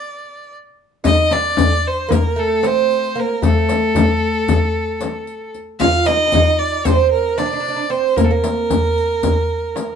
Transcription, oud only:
0, 0, Header, 1, 2, 480
1, 0, Start_track
1, 0, Tempo, 527704
1, 956, Time_signature, 9, 3, 24, 8
1, 9054, End_track
2, 0, Start_track
2, 0, Title_t, "Oud"
2, 0, Program_c, 0, 24
2, 946, Note_on_c, 0, 63, 81
2, 1187, Note_off_c, 0, 63, 0
2, 1191, Note_on_c, 0, 62, 76
2, 1897, Note_on_c, 0, 58, 72
2, 1935, Note_off_c, 0, 62, 0
2, 2144, Note_off_c, 0, 58, 0
2, 2148, Note_on_c, 0, 57, 66
2, 2390, Note_on_c, 0, 60, 75
2, 2399, Note_off_c, 0, 57, 0
2, 2869, Note_on_c, 0, 58, 72
2, 2887, Note_off_c, 0, 60, 0
2, 3109, Note_off_c, 0, 58, 0
2, 3113, Note_on_c, 0, 57, 67
2, 4996, Note_off_c, 0, 57, 0
2, 5277, Note_on_c, 0, 65, 84
2, 5511, Note_off_c, 0, 65, 0
2, 5514, Note_on_c, 0, 63, 80
2, 5695, Note_off_c, 0, 63, 0
2, 5705, Note_on_c, 0, 62, 63
2, 5756, Note_off_c, 0, 62, 0
2, 5759, Note_on_c, 0, 63, 81
2, 6227, Note_off_c, 0, 63, 0
2, 6231, Note_on_c, 0, 60, 73
2, 6706, Note_off_c, 0, 60, 0
2, 6710, Note_on_c, 0, 62, 76
2, 6772, Note_off_c, 0, 62, 0
2, 6783, Note_on_c, 0, 62, 52
2, 6836, Note_off_c, 0, 62, 0
2, 6847, Note_on_c, 0, 62, 58
2, 6903, Note_off_c, 0, 62, 0
2, 6914, Note_on_c, 0, 62, 54
2, 6979, Note_off_c, 0, 62, 0
2, 6990, Note_on_c, 0, 62, 60
2, 7050, Note_off_c, 0, 62, 0
2, 7061, Note_on_c, 0, 62, 49
2, 7128, Note_off_c, 0, 62, 0
2, 7184, Note_on_c, 0, 60, 69
2, 7436, Note_off_c, 0, 60, 0
2, 7436, Note_on_c, 0, 58, 67
2, 7546, Note_off_c, 0, 58, 0
2, 7556, Note_on_c, 0, 58, 58
2, 9054, Note_off_c, 0, 58, 0
2, 9054, End_track
0, 0, End_of_file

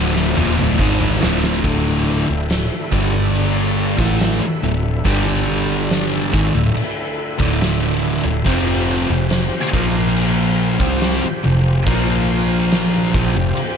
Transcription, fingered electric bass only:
0, 0, Header, 1, 3, 480
1, 0, Start_track
1, 0, Key_signature, -1, "minor"
1, 0, Tempo, 852273
1, 928, Time_signature, 4, 2, 24, 8
1, 7756, End_track
2, 0, Start_track
2, 0, Title_t, "Fingered electric bass"
2, 0, Program_c, 0, 33
2, 0, Note_on_c, 0, 26, 94
2, 195, Note_off_c, 0, 26, 0
2, 214, Note_on_c, 0, 27, 92
2, 323, Note_off_c, 0, 27, 0
2, 340, Note_on_c, 0, 26, 90
2, 444, Note_off_c, 0, 26, 0
2, 447, Note_on_c, 0, 32, 97
2, 671, Note_off_c, 0, 32, 0
2, 696, Note_on_c, 0, 26, 90
2, 915, Note_off_c, 0, 26, 0
2, 926, Note_on_c, 0, 26, 91
2, 1264, Note_off_c, 0, 26, 0
2, 1293, Note_on_c, 0, 26, 75
2, 1513, Note_off_c, 0, 26, 0
2, 1647, Note_on_c, 0, 31, 97
2, 2224, Note_off_c, 0, 31, 0
2, 2242, Note_on_c, 0, 33, 90
2, 2467, Note_off_c, 0, 33, 0
2, 2606, Note_on_c, 0, 26, 72
2, 2829, Note_off_c, 0, 26, 0
2, 2845, Note_on_c, 0, 31, 95
2, 3543, Note_off_c, 0, 31, 0
2, 3569, Note_on_c, 0, 32, 94
2, 3679, Note_off_c, 0, 32, 0
2, 3686, Note_on_c, 0, 26, 82
2, 3797, Note_off_c, 0, 26, 0
2, 4167, Note_on_c, 0, 26, 92
2, 4624, Note_off_c, 0, 26, 0
2, 4644, Note_on_c, 0, 26, 78
2, 4756, Note_off_c, 0, 26, 0
2, 4762, Note_on_c, 0, 29, 100
2, 5101, Note_off_c, 0, 29, 0
2, 5122, Note_on_c, 0, 29, 76
2, 5347, Note_off_c, 0, 29, 0
2, 5483, Note_on_c, 0, 34, 98
2, 6062, Note_off_c, 0, 34, 0
2, 6084, Note_on_c, 0, 36, 100
2, 6308, Note_off_c, 0, 36, 0
2, 6451, Note_on_c, 0, 29, 76
2, 6672, Note_off_c, 0, 29, 0
2, 6683, Note_on_c, 0, 34, 97
2, 7382, Note_off_c, 0, 34, 0
2, 7402, Note_on_c, 0, 34, 94
2, 7514, Note_off_c, 0, 34, 0
2, 7518, Note_on_c, 0, 29, 83
2, 7633, Note_off_c, 0, 29, 0
2, 7756, End_track
3, 0, Start_track
3, 0, Title_t, "Muted fingered electric bass strokes"
3, 2483, Note_on_c, 9, 29, 43
3, 2540, Note_off_c, 9, 29, 0
3, 6333, Note_on_c, 9, 29, 43
3, 6389, Note_off_c, 9, 29, 0
3, 7638, Note_on_c, 9, 29, 43
3, 7695, Note_off_c, 9, 29, 0
3, 7756, End_track
0, 0, End_of_file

